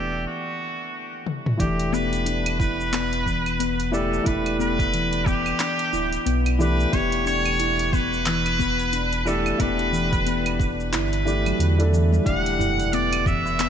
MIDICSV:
0, 0, Header, 1, 7, 480
1, 0, Start_track
1, 0, Key_signature, 1, "minor"
1, 0, Tempo, 666667
1, 1149, Time_signature, 4, 2, 24, 8
1, 9857, End_track
2, 0, Start_track
2, 0, Title_t, "Muted trumpet"
2, 0, Program_c, 0, 59
2, 0, Note_on_c, 0, 67, 91
2, 191, Note_off_c, 0, 67, 0
2, 194, Note_on_c, 0, 66, 90
2, 883, Note_off_c, 0, 66, 0
2, 1151, Note_on_c, 0, 67, 89
2, 1393, Note_on_c, 0, 71, 107
2, 1403, Note_off_c, 0, 67, 0
2, 1866, Note_off_c, 0, 71, 0
2, 1870, Note_on_c, 0, 71, 103
2, 2801, Note_off_c, 0, 71, 0
2, 2830, Note_on_c, 0, 69, 91
2, 3070, Note_on_c, 0, 71, 105
2, 3081, Note_off_c, 0, 69, 0
2, 3306, Note_off_c, 0, 71, 0
2, 3310, Note_on_c, 0, 71, 113
2, 3794, Note_on_c, 0, 67, 109
2, 3805, Note_off_c, 0, 71, 0
2, 4565, Note_off_c, 0, 67, 0
2, 4755, Note_on_c, 0, 71, 103
2, 4994, Note_on_c, 0, 73, 116
2, 5005, Note_off_c, 0, 71, 0
2, 5227, Note_off_c, 0, 73, 0
2, 5232, Note_on_c, 0, 73, 127
2, 5714, Note_on_c, 0, 71, 122
2, 5725, Note_off_c, 0, 73, 0
2, 6675, Note_on_c, 0, 69, 96
2, 6685, Note_off_c, 0, 71, 0
2, 6915, Note_on_c, 0, 71, 109
2, 6926, Note_off_c, 0, 69, 0
2, 7685, Note_off_c, 0, 71, 0
2, 7875, Note_on_c, 0, 71, 104
2, 8563, Note_off_c, 0, 71, 0
2, 8830, Note_on_c, 0, 78, 113
2, 9311, Note_on_c, 0, 74, 108
2, 9321, Note_off_c, 0, 78, 0
2, 9551, Note_on_c, 0, 76, 120
2, 9562, Note_off_c, 0, 74, 0
2, 9857, Note_off_c, 0, 76, 0
2, 9857, End_track
3, 0, Start_track
3, 0, Title_t, "Felt piano"
3, 0, Program_c, 1, 0
3, 0, Control_c, 1, 64, 127
3, 0, Note_on_c, 1, 52, 81
3, 0, Note_on_c, 1, 57, 77
3, 0, Note_on_c, 1, 62, 79
3, 0, Note_on_c, 1, 67, 94
3, 181, Note_off_c, 1, 52, 0
3, 186, Note_off_c, 1, 57, 0
3, 190, Note_off_c, 1, 62, 0
3, 195, Note_off_c, 1, 67, 0
3, 1133, Note_on_c, 1, 52, 86
3, 1143, Note_on_c, 1, 57, 76
3, 1153, Note_on_c, 1, 62, 75
3, 1159, Control_c, 1, 64, 0
3, 1161, Note_on_c, 1, 67, 91
3, 1301, Control_c, 1, 64, 127
3, 2797, Note_off_c, 1, 52, 0
3, 2802, Note_off_c, 1, 57, 0
3, 2807, Note_off_c, 1, 62, 0
3, 2811, Note_off_c, 1, 67, 0
3, 2819, Note_on_c, 1, 52, 96
3, 2823, Note_on_c, 1, 57, 92
3, 2828, Note_on_c, 1, 62, 86
3, 2833, Note_on_c, 1, 67, 103
3, 2917, Note_off_c, 1, 52, 0
3, 2919, Note_off_c, 1, 57, 0
3, 2922, Note_off_c, 1, 62, 0
3, 2924, Note_off_c, 1, 67, 0
3, 3049, Note_on_c, 1, 52, 96
3, 3060, Note_on_c, 1, 57, 90
3, 3067, Note_on_c, 1, 62, 86
3, 3077, Note_on_c, 1, 67, 105
3, 4715, Note_off_c, 1, 52, 0
3, 4720, Note_off_c, 1, 57, 0
3, 4724, Note_off_c, 1, 62, 0
3, 4729, Note_off_c, 1, 67, 0
3, 4742, Note_on_c, 1, 52, 90
3, 4748, Note_on_c, 1, 57, 85
3, 4752, Note_on_c, 1, 62, 84
3, 4757, Note_on_c, 1, 67, 97
3, 4962, Note_off_c, 1, 52, 0
3, 4964, Note_off_c, 1, 57, 0
3, 4966, Note_off_c, 1, 62, 0
3, 4969, Note_off_c, 1, 67, 0
3, 4974, Note_on_c, 1, 52, 87
3, 4984, Note_on_c, 1, 57, 73
3, 4994, Note_on_c, 1, 62, 80
3, 5003, Note_on_c, 1, 67, 98
3, 6638, Note_off_c, 1, 52, 0
3, 6643, Note_off_c, 1, 57, 0
3, 6647, Note_off_c, 1, 62, 0
3, 6652, Note_off_c, 1, 67, 0
3, 6661, Note_on_c, 1, 52, 101
3, 6665, Note_on_c, 1, 57, 85
3, 6669, Note_on_c, 1, 62, 85
3, 6674, Note_on_c, 1, 67, 102
3, 6758, Note_off_c, 1, 52, 0
3, 6760, Note_off_c, 1, 57, 0
3, 6762, Note_off_c, 1, 62, 0
3, 6765, Note_off_c, 1, 67, 0
3, 6896, Note_on_c, 1, 52, 91
3, 6905, Note_on_c, 1, 57, 85
3, 6915, Note_on_c, 1, 62, 86
3, 6925, Note_on_c, 1, 67, 105
3, 8082, Note_off_c, 1, 52, 0
3, 8087, Note_off_c, 1, 57, 0
3, 8092, Note_off_c, 1, 62, 0
3, 8097, Note_off_c, 1, 67, 0
3, 8099, Note_on_c, 1, 52, 78
3, 8105, Note_on_c, 1, 57, 73
3, 8109, Note_on_c, 1, 62, 69
3, 8114, Note_on_c, 1, 67, 85
3, 8451, Note_off_c, 1, 52, 0
3, 8454, Note_off_c, 1, 57, 0
3, 8456, Note_off_c, 1, 62, 0
3, 8459, Note_off_c, 1, 67, 0
3, 8483, Note_on_c, 1, 52, 89
3, 8487, Note_on_c, 1, 57, 81
3, 8493, Note_on_c, 1, 62, 80
3, 8497, Note_on_c, 1, 69, 95
3, 8802, Note_off_c, 1, 52, 0
3, 8804, Note_off_c, 1, 57, 0
3, 8807, Note_off_c, 1, 62, 0
3, 8809, Note_off_c, 1, 69, 0
3, 8813, Note_on_c, 1, 52, 82
3, 8824, Note_on_c, 1, 57, 74
3, 8833, Note_on_c, 1, 62, 76
3, 8842, Note_on_c, 1, 67, 94
3, 9857, Note_off_c, 1, 52, 0
3, 9857, Note_off_c, 1, 57, 0
3, 9857, Note_off_c, 1, 62, 0
3, 9857, Note_off_c, 1, 67, 0
3, 9857, End_track
4, 0, Start_track
4, 0, Title_t, "Handpan"
4, 0, Program_c, 2, 114
4, 0, Note_on_c, 2, 62, 61
4, 179, Note_off_c, 2, 62, 0
4, 1150, Note_on_c, 2, 52, 85
4, 1283, Note_off_c, 2, 52, 0
4, 1387, Note_on_c, 2, 59, 98
4, 1522, Note_off_c, 2, 59, 0
4, 1626, Note_on_c, 2, 62, 75
4, 1858, Note_off_c, 2, 62, 0
4, 1869, Note_on_c, 2, 64, 72
4, 2003, Note_off_c, 2, 64, 0
4, 2106, Note_on_c, 2, 59, 97
4, 2338, Note_off_c, 2, 59, 0
4, 2350, Note_on_c, 2, 52, 73
4, 2483, Note_off_c, 2, 52, 0
4, 2587, Note_on_c, 2, 59, 90
4, 2722, Note_off_c, 2, 59, 0
4, 2828, Note_on_c, 2, 62, 77
4, 3059, Note_off_c, 2, 62, 0
4, 3068, Note_on_c, 2, 64, 87
4, 3202, Note_off_c, 2, 64, 0
4, 3308, Note_on_c, 2, 59, 100
4, 3539, Note_off_c, 2, 59, 0
4, 3550, Note_on_c, 2, 52, 80
4, 3683, Note_off_c, 2, 52, 0
4, 3790, Note_on_c, 2, 59, 92
4, 3923, Note_off_c, 2, 59, 0
4, 4030, Note_on_c, 2, 62, 84
4, 4260, Note_off_c, 2, 62, 0
4, 4270, Note_on_c, 2, 64, 74
4, 4403, Note_off_c, 2, 64, 0
4, 4508, Note_on_c, 2, 59, 92
4, 4738, Note_off_c, 2, 59, 0
4, 4750, Note_on_c, 2, 52, 74
4, 4883, Note_off_c, 2, 52, 0
4, 4991, Note_on_c, 2, 59, 97
4, 5124, Note_off_c, 2, 59, 0
4, 5227, Note_on_c, 2, 62, 81
4, 5458, Note_off_c, 2, 62, 0
4, 5469, Note_on_c, 2, 64, 81
4, 5603, Note_off_c, 2, 64, 0
4, 5710, Note_on_c, 2, 59, 85
4, 5939, Note_off_c, 2, 59, 0
4, 5948, Note_on_c, 2, 52, 83
4, 6082, Note_off_c, 2, 52, 0
4, 6188, Note_on_c, 2, 59, 106
4, 6322, Note_off_c, 2, 59, 0
4, 6431, Note_on_c, 2, 62, 76
4, 6660, Note_off_c, 2, 62, 0
4, 6669, Note_on_c, 2, 64, 74
4, 6803, Note_off_c, 2, 64, 0
4, 6909, Note_on_c, 2, 59, 102
4, 7139, Note_off_c, 2, 59, 0
4, 7145, Note_on_c, 2, 52, 80
4, 7281, Note_off_c, 2, 52, 0
4, 7387, Note_on_c, 2, 59, 96
4, 7522, Note_off_c, 2, 59, 0
4, 7628, Note_on_c, 2, 62, 69
4, 7858, Note_off_c, 2, 62, 0
4, 7868, Note_on_c, 2, 64, 80
4, 8002, Note_off_c, 2, 64, 0
4, 8111, Note_on_c, 2, 64, 71
4, 8244, Note_off_c, 2, 64, 0
4, 8250, Note_on_c, 2, 54, 77
4, 8339, Note_off_c, 2, 54, 0
4, 8349, Note_on_c, 2, 50, 71
4, 8483, Note_off_c, 2, 50, 0
4, 8589, Note_on_c, 2, 52, 79
4, 8716, Note_off_c, 2, 52, 0
4, 8729, Note_on_c, 2, 55, 98
4, 8786, Note_off_c, 2, 55, 0
4, 8829, Note_on_c, 2, 62, 88
4, 9059, Note_off_c, 2, 62, 0
4, 9070, Note_on_c, 2, 64, 75
4, 9203, Note_off_c, 2, 64, 0
4, 9310, Note_on_c, 2, 59, 99
4, 9540, Note_off_c, 2, 59, 0
4, 9551, Note_on_c, 2, 52, 69
4, 9684, Note_off_c, 2, 52, 0
4, 9790, Note_on_c, 2, 59, 99
4, 9857, Note_off_c, 2, 59, 0
4, 9857, End_track
5, 0, Start_track
5, 0, Title_t, "Sub bass"
5, 0, Program_c, 3, 38
5, 0, Note_on_c, 3, 28, 83
5, 189, Note_off_c, 3, 28, 0
5, 1149, Note_on_c, 3, 28, 105
5, 3022, Note_off_c, 3, 28, 0
5, 3067, Note_on_c, 3, 28, 105
5, 3981, Note_off_c, 3, 28, 0
5, 4269, Note_on_c, 3, 26, 75
5, 4450, Note_off_c, 3, 26, 0
5, 4508, Note_on_c, 3, 35, 97
5, 4941, Note_off_c, 3, 35, 0
5, 4990, Note_on_c, 3, 28, 98
5, 6862, Note_off_c, 3, 28, 0
5, 6910, Note_on_c, 3, 28, 97
5, 7870, Note_on_c, 3, 31, 87
5, 7881, Note_off_c, 3, 28, 0
5, 8302, Note_off_c, 3, 31, 0
5, 8346, Note_on_c, 3, 40, 103
5, 8780, Note_off_c, 3, 40, 0
5, 8827, Note_on_c, 3, 28, 101
5, 9857, Note_off_c, 3, 28, 0
5, 9857, End_track
6, 0, Start_track
6, 0, Title_t, "Tabla"
6, 9068, Note_on_c, 9, 64, 84
6, 9140, Note_off_c, 9, 64, 0
6, 9207, Note_on_c, 9, 63, 50
6, 9279, Note_off_c, 9, 63, 0
6, 9546, Note_on_c, 9, 64, 86
6, 9618, Note_off_c, 9, 64, 0
6, 9688, Note_on_c, 9, 60, 81
6, 9760, Note_off_c, 9, 60, 0
6, 9857, End_track
7, 0, Start_track
7, 0, Title_t, "Drums"
7, 911, Note_on_c, 9, 48, 56
7, 983, Note_off_c, 9, 48, 0
7, 1054, Note_on_c, 9, 47, 66
7, 1126, Note_off_c, 9, 47, 0
7, 1150, Note_on_c, 9, 36, 112
7, 1153, Note_on_c, 9, 42, 66
7, 1158, Note_on_c, 9, 69, 33
7, 1222, Note_off_c, 9, 36, 0
7, 1225, Note_off_c, 9, 42, 0
7, 1230, Note_off_c, 9, 69, 0
7, 1292, Note_on_c, 9, 42, 45
7, 1364, Note_off_c, 9, 42, 0
7, 1397, Note_on_c, 9, 69, 78
7, 1469, Note_off_c, 9, 69, 0
7, 1532, Note_on_c, 9, 42, 34
7, 1537, Note_on_c, 9, 69, 47
7, 1604, Note_off_c, 9, 42, 0
7, 1609, Note_off_c, 9, 69, 0
7, 1630, Note_on_c, 9, 42, 68
7, 1635, Note_on_c, 9, 69, 32
7, 1702, Note_off_c, 9, 42, 0
7, 1707, Note_off_c, 9, 69, 0
7, 1772, Note_on_c, 9, 42, 48
7, 1772, Note_on_c, 9, 75, 82
7, 1844, Note_off_c, 9, 42, 0
7, 1844, Note_off_c, 9, 75, 0
7, 1870, Note_on_c, 9, 36, 112
7, 1877, Note_on_c, 9, 69, 72
7, 1942, Note_off_c, 9, 36, 0
7, 1949, Note_off_c, 9, 69, 0
7, 2018, Note_on_c, 9, 69, 42
7, 2090, Note_off_c, 9, 69, 0
7, 2112, Note_on_c, 9, 39, 77
7, 2112, Note_on_c, 9, 42, 70
7, 2118, Note_on_c, 9, 69, 33
7, 2184, Note_off_c, 9, 39, 0
7, 2184, Note_off_c, 9, 42, 0
7, 2190, Note_off_c, 9, 69, 0
7, 2252, Note_on_c, 9, 42, 45
7, 2324, Note_off_c, 9, 42, 0
7, 2350, Note_on_c, 9, 36, 56
7, 2357, Note_on_c, 9, 69, 73
7, 2422, Note_off_c, 9, 36, 0
7, 2429, Note_off_c, 9, 69, 0
7, 2493, Note_on_c, 9, 42, 31
7, 2493, Note_on_c, 9, 75, 75
7, 2498, Note_on_c, 9, 69, 44
7, 2565, Note_off_c, 9, 42, 0
7, 2565, Note_off_c, 9, 75, 0
7, 2570, Note_off_c, 9, 69, 0
7, 2593, Note_on_c, 9, 42, 71
7, 2599, Note_on_c, 9, 69, 34
7, 2665, Note_off_c, 9, 42, 0
7, 2671, Note_off_c, 9, 69, 0
7, 2734, Note_on_c, 9, 42, 45
7, 2806, Note_off_c, 9, 42, 0
7, 2837, Note_on_c, 9, 69, 76
7, 2909, Note_off_c, 9, 69, 0
7, 2978, Note_on_c, 9, 69, 42
7, 3050, Note_off_c, 9, 69, 0
7, 3069, Note_on_c, 9, 36, 115
7, 3069, Note_on_c, 9, 42, 61
7, 3075, Note_on_c, 9, 69, 35
7, 3141, Note_off_c, 9, 36, 0
7, 3141, Note_off_c, 9, 42, 0
7, 3147, Note_off_c, 9, 69, 0
7, 3212, Note_on_c, 9, 42, 41
7, 3212, Note_on_c, 9, 75, 68
7, 3284, Note_off_c, 9, 42, 0
7, 3284, Note_off_c, 9, 75, 0
7, 3317, Note_on_c, 9, 69, 77
7, 3389, Note_off_c, 9, 69, 0
7, 3450, Note_on_c, 9, 36, 105
7, 3454, Note_on_c, 9, 42, 31
7, 3460, Note_on_c, 9, 69, 47
7, 3522, Note_off_c, 9, 36, 0
7, 3526, Note_off_c, 9, 42, 0
7, 3532, Note_off_c, 9, 69, 0
7, 3554, Note_on_c, 9, 42, 66
7, 3559, Note_on_c, 9, 69, 34
7, 3626, Note_off_c, 9, 42, 0
7, 3631, Note_off_c, 9, 69, 0
7, 3692, Note_on_c, 9, 42, 47
7, 3764, Note_off_c, 9, 42, 0
7, 3788, Note_on_c, 9, 36, 114
7, 3797, Note_on_c, 9, 69, 75
7, 3860, Note_off_c, 9, 36, 0
7, 3869, Note_off_c, 9, 69, 0
7, 3931, Note_on_c, 9, 75, 76
7, 3936, Note_on_c, 9, 69, 47
7, 4003, Note_off_c, 9, 75, 0
7, 4008, Note_off_c, 9, 69, 0
7, 4029, Note_on_c, 9, 39, 81
7, 4029, Note_on_c, 9, 42, 65
7, 4035, Note_on_c, 9, 69, 33
7, 4101, Note_off_c, 9, 39, 0
7, 4101, Note_off_c, 9, 42, 0
7, 4107, Note_off_c, 9, 69, 0
7, 4170, Note_on_c, 9, 42, 44
7, 4242, Note_off_c, 9, 42, 0
7, 4274, Note_on_c, 9, 69, 76
7, 4346, Note_off_c, 9, 69, 0
7, 4410, Note_on_c, 9, 42, 30
7, 4415, Note_on_c, 9, 69, 44
7, 4482, Note_off_c, 9, 42, 0
7, 4487, Note_off_c, 9, 69, 0
7, 4511, Note_on_c, 9, 42, 69
7, 4516, Note_on_c, 9, 69, 34
7, 4583, Note_off_c, 9, 42, 0
7, 4588, Note_off_c, 9, 69, 0
7, 4652, Note_on_c, 9, 42, 40
7, 4652, Note_on_c, 9, 75, 70
7, 4724, Note_off_c, 9, 42, 0
7, 4724, Note_off_c, 9, 75, 0
7, 4757, Note_on_c, 9, 69, 77
7, 4829, Note_off_c, 9, 69, 0
7, 4897, Note_on_c, 9, 69, 48
7, 4969, Note_off_c, 9, 69, 0
7, 4989, Note_on_c, 9, 36, 124
7, 4991, Note_on_c, 9, 42, 60
7, 4996, Note_on_c, 9, 69, 31
7, 5061, Note_off_c, 9, 36, 0
7, 5063, Note_off_c, 9, 42, 0
7, 5068, Note_off_c, 9, 69, 0
7, 5129, Note_on_c, 9, 42, 41
7, 5201, Note_off_c, 9, 42, 0
7, 5232, Note_on_c, 9, 69, 78
7, 5304, Note_off_c, 9, 69, 0
7, 5368, Note_on_c, 9, 42, 31
7, 5368, Note_on_c, 9, 75, 71
7, 5373, Note_on_c, 9, 69, 44
7, 5440, Note_off_c, 9, 42, 0
7, 5440, Note_off_c, 9, 75, 0
7, 5445, Note_off_c, 9, 69, 0
7, 5469, Note_on_c, 9, 42, 66
7, 5474, Note_on_c, 9, 69, 34
7, 5541, Note_off_c, 9, 42, 0
7, 5546, Note_off_c, 9, 69, 0
7, 5611, Note_on_c, 9, 42, 45
7, 5683, Note_off_c, 9, 42, 0
7, 5709, Note_on_c, 9, 36, 112
7, 5714, Note_on_c, 9, 69, 76
7, 5781, Note_off_c, 9, 36, 0
7, 5786, Note_off_c, 9, 69, 0
7, 5857, Note_on_c, 9, 69, 50
7, 5929, Note_off_c, 9, 69, 0
7, 5948, Note_on_c, 9, 39, 74
7, 5948, Note_on_c, 9, 42, 63
7, 5953, Note_on_c, 9, 69, 34
7, 6020, Note_off_c, 9, 39, 0
7, 6020, Note_off_c, 9, 42, 0
7, 6025, Note_off_c, 9, 69, 0
7, 6090, Note_on_c, 9, 42, 42
7, 6090, Note_on_c, 9, 75, 69
7, 6162, Note_off_c, 9, 42, 0
7, 6162, Note_off_c, 9, 75, 0
7, 6189, Note_on_c, 9, 36, 64
7, 6193, Note_on_c, 9, 69, 81
7, 6261, Note_off_c, 9, 36, 0
7, 6265, Note_off_c, 9, 69, 0
7, 6332, Note_on_c, 9, 42, 31
7, 6338, Note_on_c, 9, 69, 44
7, 6404, Note_off_c, 9, 42, 0
7, 6410, Note_off_c, 9, 69, 0
7, 6429, Note_on_c, 9, 42, 64
7, 6434, Note_on_c, 9, 69, 37
7, 6501, Note_off_c, 9, 42, 0
7, 6506, Note_off_c, 9, 69, 0
7, 6571, Note_on_c, 9, 42, 40
7, 6643, Note_off_c, 9, 42, 0
7, 6674, Note_on_c, 9, 69, 76
7, 6746, Note_off_c, 9, 69, 0
7, 6811, Note_on_c, 9, 75, 72
7, 6817, Note_on_c, 9, 69, 49
7, 6883, Note_off_c, 9, 75, 0
7, 6889, Note_off_c, 9, 69, 0
7, 6910, Note_on_c, 9, 36, 115
7, 6911, Note_on_c, 9, 42, 61
7, 6916, Note_on_c, 9, 69, 33
7, 6982, Note_off_c, 9, 36, 0
7, 6983, Note_off_c, 9, 42, 0
7, 6988, Note_off_c, 9, 69, 0
7, 7050, Note_on_c, 9, 42, 37
7, 7122, Note_off_c, 9, 42, 0
7, 7157, Note_on_c, 9, 69, 83
7, 7229, Note_off_c, 9, 69, 0
7, 7290, Note_on_c, 9, 36, 106
7, 7292, Note_on_c, 9, 42, 29
7, 7297, Note_on_c, 9, 69, 49
7, 7362, Note_off_c, 9, 36, 0
7, 7364, Note_off_c, 9, 42, 0
7, 7369, Note_off_c, 9, 69, 0
7, 7392, Note_on_c, 9, 42, 64
7, 7397, Note_on_c, 9, 69, 35
7, 7464, Note_off_c, 9, 42, 0
7, 7469, Note_off_c, 9, 69, 0
7, 7531, Note_on_c, 9, 42, 44
7, 7531, Note_on_c, 9, 75, 78
7, 7603, Note_off_c, 9, 42, 0
7, 7603, Note_off_c, 9, 75, 0
7, 7629, Note_on_c, 9, 36, 113
7, 7636, Note_on_c, 9, 69, 80
7, 7701, Note_off_c, 9, 36, 0
7, 7708, Note_off_c, 9, 69, 0
7, 7778, Note_on_c, 9, 69, 45
7, 7850, Note_off_c, 9, 69, 0
7, 7872, Note_on_c, 9, 39, 74
7, 7872, Note_on_c, 9, 42, 61
7, 7877, Note_on_c, 9, 69, 32
7, 7944, Note_off_c, 9, 39, 0
7, 7944, Note_off_c, 9, 42, 0
7, 7949, Note_off_c, 9, 69, 0
7, 8013, Note_on_c, 9, 42, 39
7, 8085, Note_off_c, 9, 42, 0
7, 8117, Note_on_c, 9, 69, 77
7, 8189, Note_off_c, 9, 69, 0
7, 8254, Note_on_c, 9, 42, 29
7, 8254, Note_on_c, 9, 75, 77
7, 8259, Note_on_c, 9, 69, 45
7, 8326, Note_off_c, 9, 42, 0
7, 8326, Note_off_c, 9, 75, 0
7, 8331, Note_off_c, 9, 69, 0
7, 8354, Note_on_c, 9, 42, 66
7, 8359, Note_on_c, 9, 69, 36
7, 8426, Note_off_c, 9, 42, 0
7, 8431, Note_off_c, 9, 69, 0
7, 8494, Note_on_c, 9, 42, 41
7, 8566, Note_off_c, 9, 42, 0
7, 8597, Note_on_c, 9, 69, 81
7, 8669, Note_off_c, 9, 69, 0
7, 8738, Note_on_c, 9, 69, 46
7, 8810, Note_off_c, 9, 69, 0
7, 8828, Note_on_c, 9, 36, 113
7, 8831, Note_on_c, 9, 42, 63
7, 8836, Note_on_c, 9, 69, 30
7, 8900, Note_off_c, 9, 36, 0
7, 8903, Note_off_c, 9, 42, 0
7, 8908, Note_off_c, 9, 69, 0
7, 8973, Note_on_c, 9, 42, 40
7, 9045, Note_off_c, 9, 42, 0
7, 9079, Note_on_c, 9, 69, 75
7, 9151, Note_off_c, 9, 69, 0
7, 9213, Note_on_c, 9, 42, 30
7, 9218, Note_on_c, 9, 69, 45
7, 9285, Note_off_c, 9, 42, 0
7, 9290, Note_off_c, 9, 69, 0
7, 9311, Note_on_c, 9, 42, 62
7, 9316, Note_on_c, 9, 69, 34
7, 9383, Note_off_c, 9, 42, 0
7, 9388, Note_off_c, 9, 69, 0
7, 9450, Note_on_c, 9, 42, 44
7, 9450, Note_on_c, 9, 75, 78
7, 9522, Note_off_c, 9, 42, 0
7, 9522, Note_off_c, 9, 75, 0
7, 9548, Note_on_c, 9, 36, 111
7, 9556, Note_on_c, 9, 69, 75
7, 9620, Note_off_c, 9, 36, 0
7, 9628, Note_off_c, 9, 69, 0
7, 9694, Note_on_c, 9, 69, 43
7, 9766, Note_off_c, 9, 69, 0
7, 9790, Note_on_c, 9, 39, 75
7, 9790, Note_on_c, 9, 42, 61
7, 9796, Note_on_c, 9, 69, 33
7, 9857, Note_off_c, 9, 39, 0
7, 9857, Note_off_c, 9, 42, 0
7, 9857, Note_off_c, 9, 69, 0
7, 9857, End_track
0, 0, End_of_file